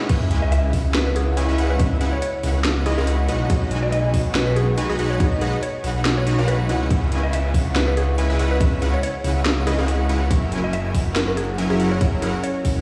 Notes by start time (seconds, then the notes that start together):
0.09 C#2 C#3 G#3 B3 C#4 E4 B4 C#5 E5, kick, closed hi-hat, crash, sub drop
0.31 C#2 G#3 C#4 E4 B4 G#5, closed hi-hat
0.42 E5
0.52 E5, closed hi-hat
0.73 C#2 G#3 C#4 E4 B4 F#5, kick, open hi-hat
0.94 B4, snare, closed hi-hat
1.07 B4
1.16 G#4, closed hi-hat
1.37 C#2 G#3 C#4 E4 B4 G#5, closed hi-hat
1.49 C#2 G#3 C#4 E4 B4 E5
1.58 C#2 G#3 C#4 E4 B4 F#5, closed hi-hat
1.70 B4
1.79 C#2 G#3 C#4 E4 B4 E5, kick, closed hi-hat
2.01 C#2 G#3 C#4 E4 B4 F#5, closed hi-hat
2.13 C#5
2.22 C#5, closed hi-hat
2.43 C#2 G#3 C#4 E4 B4 F#5, open hi-hat
2.65 snare, closed hi-hat
2.86 C#2 G#3 C#4 E4 G#4 B4 D#5, closed hi-hat
2.98 C#2 G#3 C#4 E4 G#4 B4 F#5
3.07 closed hi-hat
3.28 B1 G#3 D#4 F#4 B4 F#5, closed hi-hat
3.50 B1 G#3 D#4 F#4 B4 D#5, kick, closed hi-hat
3.71 B1 G#3 D#4 F#4 B4 G#5, closed hi-hat
3.83 D#5
3.92 D#5, closed hi-hat
4.14 B1 G#3 D#4 F#4 B4 F#5, kick, open hi-hat
4.35 B4, snare, closed hi-hat
4.47 B4
4.56 G#4, closed hi-hat
4.78 B1 G#3 D#4 F#4 B4 G#5, closed hi-hat
4.89 B1 G#3 D#4 F#4 G#4 B4 D#5
4.99 B1 G#3 D#4 F#4 B4 F#5, closed hi-hat
5.10 C#5
5.20 B1 G#3 D#4 F#4 B4 C#5 D#5, kick, closed hi-hat
5.41 B1 G#3 D#4 F#4 G#4 B4 F#5, closed hi-hat
5.63 C#5, closed hi-hat
5.84 B1 G#3 D#4 F#4 B4 F#5, open hi-hat
6.05 snare, closed hi-hat
6.17 C#5
6.26 B1 G#3 D#4 F#4 B4 C#5, closed hi-hat
6.38 B1 G#3 D#4 F#4 B4 F#5
6.48 B4, closed hi-hat
6.69 C#2 C#3 G#3 C#4 E4 B4 F#5, closed hi-hat
6.90 C#2 G#3 C#4 E4 B4 E5, kick, closed hi-hat
7.12 C#2 G#3 C#4 E4 B4 G#5, closed hi-hat
7.23 E5
7.33 E5, closed hi-hat
7.54 C#2 G#3 C#4 E4 B4 F#5, kick, open hi-hat
7.76 B4, snare, closed hi-hat
7.88 B4
7.97 G#4, closed hi-hat
8.18 C#2 G#3 C#4 E4 B4 G#5, closed hi-hat
8.30 C#2 G#3 C#4 E4 B4 E5
8.39 C#2 G#3 C#4 E4 B4 F#5, closed hi-hat
8.51 B4
8.60 C#2 G#3 C#4 E4 B4 E5, kick, closed hi-hat
8.82 C#2 G#3 C#4 E4 B4 F#5, closed hi-hat
8.94 C#5
9.03 C#5, closed hi-hat
9.24 C#2 G#3 C#4 E4 B4 F#5, open hi-hat
9.46 snare, closed hi-hat
9.67 C#2 G#3 C#4 E4 G#4 B4 D#5, closed hi-hat
9.78 C#2 G#3 C#4 E4 G#4 B4 F#5
9.88 closed hi-hat
10.09 C#2 G#3 C#4 E4 B4 F#5, closed hi-hat
10.30 F#1 F#3 C#4 E4 G#4 A#4 E5, kick, closed hi-hat
10.52 F#1 F#3 C#4 E4 A#4 G#5, closed hi-hat
10.64 E5
10.73 E5, closed hi-hat
10.94 F#1 F#3 C#4 E4 A#4 F#5, kick, open hi-hat
11.16 A#4, snare, closed hi-hat
11.28 A#4
11.37 G#4, closed hi-hat
11.58 F#1 F#3 C#4 E4 A#4 G#5, closed hi-hat
11.70 F#1 F#3 C#4 E4 G#4 A#4 E5
11.79 F#1 F#3 C#4 E4 A#4 F#5, closed hi-hat
11.91 C#5
12.01 F#1 F#3 C#4 E4 A#4 C#5 E5, kick, closed hi-hat
12.22 F#1 F#3 C#4 E4 G#4 A#4 F#5, closed hi-hat
12.43 C#5, closed hi-hat
12.65 F#1 F#3 C#4 E4 A#4 F#5, kick, open hi-hat